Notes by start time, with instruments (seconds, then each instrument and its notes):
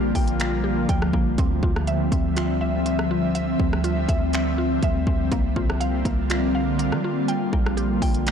Already playing: 808-style bass A#1, ambient pad D3 F3 G3 A#3 F4, synth pluck A#3 G4 G5
0.15 808-style bass A#1, synth pluck G5, kick, closed hi-hat, open hi-hat
0.28 closed hi-hat
0.40 synth pluck A#3, finger snap, closed hi-hat
0.64 synth pluck G4
0.89 808-style bass D2, synth pluck G5, kick, closed hi-hat
1.02 cross-stick
1.13 808-style bass A#1, synth pluck A#3, kick
1.38 808-style bass D2, ambient pad F3 C4 E5, synth pluck C4, kick, closed hi-hat
1.63 808-style bass D2, synth pluck F4, kick
1.76 cross-stick
1.87 synth pluck E5, closed hi-hat
2.12 808-style bass D2, synth pluck C4, kick, closed hi-hat
2.37 synth pluck F4, finger snap, closed hi-hat
2.61 synth pluck E5
2.86 synth pluck C4, closed hi-hat
2.99 cross-stick
3.11 synth pluck F4
3.35 synth pluck E5, closed hi-hat
3.60 808-style bass D2, synth pluck C4, kick
3.73 cross-stick
3.84 synth pluck F4, closed hi-hat
4.09 808-style bass D2, synth pluck E5, kick, closed hi-hat
4.33 synth pluck C4, finger snap, closed hi-hat
4.58 synth pluck F4
4.83 808-style bass D2, synth pluck E5, kick, closed hi-hat
5.07 808-style bass D2, synth pluck C4, kick
5.32 808-style bass C2, ambient pad D3 G3 A#3 F4, synth pluck A#3, kick, closed hi-hat
5.56 808-style bass C2, synth pluck F4, kick
5.70 cross-stick
5.80 synth pluck F5, closed hi-hat
6.05 808-style bass C2, synth pluck A#3, kick, closed hi-hat
6.30 synth pluck F4, finger snap, closed hi-hat
6.55 synth pluck F5
6.79 synth pluck A#3, closed hi-hat
6.91 808-style bass G3, cross-stick
7.04 synth pluck F4
7.28 ambient pad D3 F3 A#3, synth pluck G5, closed hi-hat
7.53 808-style bass A#1, synth pluck A#3, kick
7.66 cross-stick
7.77 synth pluck G4, closed hi-hat
8.02 808-style bass A#1, synth pluck G5, kick, closed hi-hat, open hi-hat
8.14 closed hi-hat
8.27 synth pluck A#3, finger snap, closed hi-hat